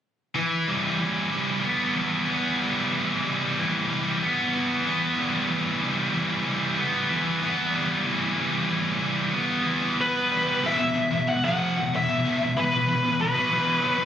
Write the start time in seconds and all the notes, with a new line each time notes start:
0.35 E3
0.68 G3
1.00 E3
1.32 G3
1.63 B3
1.95 E3
2.27 B3
2.61 G3
2.92 E3
3.24 G3
3.57 E3
3.90 G3
4.22 B3
4.54 E3
4.87 B3
5.19 G3
5.49 E3
5.82 G3
6.14 E3
6.46 G3
6.78 B3
7.10 E3
7.43 B3
7.74 G3
8.07 E3
8.37 G3
8.69 E3
9.02 G3
9.33 B3
9.66 E3
9.98 B3 B4
10.30 G3
10.63 E2 B2 E5
10.79 E2 B2
10.94 E2 B2
11.11 E2 B2
11.27 E2 B2 F#5
11.44 F2 C3 F3 F#5
11.78 E2 B2
11.93 E2 B2 E5
12.09 E2 B2
12.25 E2 B2
12.41 E2 B2
12.56 E2 B2 B4
12.72 E2 B2
12.88 E2 B2
13.03 E2 B2
13.20 E2 B2 B4
13.34 B2 F#3
13.51 E2 B2 E3
13.81 B2 F#3
13.98 E2 B2